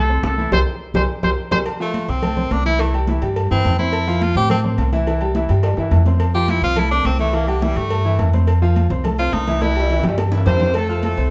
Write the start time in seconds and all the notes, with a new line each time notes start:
Already playing: C2 A4
0.09 C4 C5 C6, high conga
0.23 C2 A4, high bongo, low bongo, high conga, high timbale, low timbale
0.38 E3 E4 E5, high conga
0.52 C2 G4 A#4 C5, high bongo, low conga, high timbale
0.94 C2 G4 A#4 C5, high bongo, low conga, high timbale
1.23 C2 G4 A#4 C5, high bongo, low conga, high timbale
1.51 C2 G4 A#4 C5, high bongo, low conga, high timbale
1.66 cowbell, high conga, low agogo
1.80 F3 A3 F4 F5, high conga
1.94 cowbell, high conga, low timbale, low agogo
2.08 C2 C4 C5 C6, cowbell
2.22 A3 A4 A5, cowbell, high conga, low conga, low agogo
2.37 C4 C5 C6, high conga, low conga
2.51 C2 D4, cowbell, high conga, low timbale, low agogo
2.66 E3 E4 E5, cowbell, high conga
2.79 E3 A3 E4 E5, cowbell, high conga, low agogo
2.94 G3 G4 G5, high conga, low agogo
3.07 E3 E4 E5, cowbell, high conga, low timbale
3.22 G2 G3 G4 G5, cowbell, low agogo
3.36 cowbell, high conga, low agogo
3.51 G2 E3 C4 E4 E5, high conga
3.64 F2, cowbell, high conga, low timbale, low agogo
3.78 C4 E4 C5 C6, cowbell, high conga
3.93 cowbell, high conga, low agogo
4.07 F3 F4 F5, high conga
4.21 F4, cowbell, high conga, low timbale, low agogo
4.35 A2 C4 G4 C5 C6, cowbell, high conga
4.50 A3 C4 A4 A5, cowbell, high conga, low conga, low agogo
4.64 C4 C5 C6, high conga, low conga
4.78 C2, cowbell, high conga, low timbale, low agogo
4.92 E3 E4 E5, cowbell, high conga
5.07 E3 E4 E5, cowbell, low agogo
5.21 G3 G4 G5, high conga, low agogo
5.35 E3 E4 E5, cowbell, high conga, low timbale
5.49 G2 G3 G4 G5, cowbell, low agogo
5.63 cowbell, high conga, high timbale, low agogo
5.77 G2 E3 E4 E5, high conga, low timbale
5.91 F2, cowbell, high conga, low timbale, low agogo
6.05 C4 C5 C6, cowbell, high conga, low timbale
6.20 cowbell, high conga, low agogo
6.34 F3 F4 G4 F5, high conga
6.48 E4, cowbell, high conga, low timbale, low agogo
6.62 C2 C4 F4 C5 C6, cowbell
6.76 A3 E4 A4 A5, cowbell, high conga, low conga, low agogo
6.91 C4 D4 C5 C6, high conga
7.05 C2 C4, cowbell, high conga, low timbale, low agogo
7.19 E3 A3 E4 E5, cowbell, high conga
7.33 E3 A#3 E4 E5, cowbell, high conga, low agogo
7.48 D3 G3 G4 G5, high conga, low agogo
7.62 E3 G3 E4 E5, cowbell, high conga, low timbale
7.76 G2 G3 A3 G4 G5, cowbell, high conga, low agogo
7.90 cowbell, high conga, low agogo
8.05 E3 E4 E5, high conga
8.19 F2, cowbell, high conga, low timbale, low agogo
8.33 C4 C5 C6, cowbell, high conga
8.47 cowbell, high conga, low agogo
8.62 F3 F4 F5, high conga
8.76 cowbell, high conga, low timbale, low agogo
8.90 C2 C4 C5 C6, cowbell
9.04 A3 A4 A5, cowbell, high conga, low conga, low agogo
9.19 C4 F4 C5 C6, high conga
9.33 C2 D#4, cowbell, high conga, low timbale, low agogo
9.47 E3 E4 E5, cowbell, high conga
9.61 E3 E4 E5, cowbell, high conga, high timbale, low agogo
9.71 high timbale
9.75 G3 G4 G5, low agogo
9.80 high timbale
9.90 E3 E4 E5, cowbell, high timbale
9.99 G2, low timbale
10.03 G3 G4 G5, cowbell, high bongo, low conga, low agogo
10.09 high timbale
10.18 cowbell, high bongo, low agogo
10.32 E3 E4 E5, low bongo
10.38 low timbale
10.46 F2 C4 E4 G4 C5, cowbell, low bongo, low conga, low timbale, low agogo
10.57 cowbell, low bongo, low timbale
10.61 C4 C5 C6, low conga
10.66 low timbale
10.74 A3 C4 E4 A4 A5, cowbell, high conga, low agogo
10.89 F4 F5 F6, high conga
11.03 A3 C4 E4 A4, cowbell, high conga, low timbale, low agogo
11.17 C2 C4 C5 C6, cowbell, high conga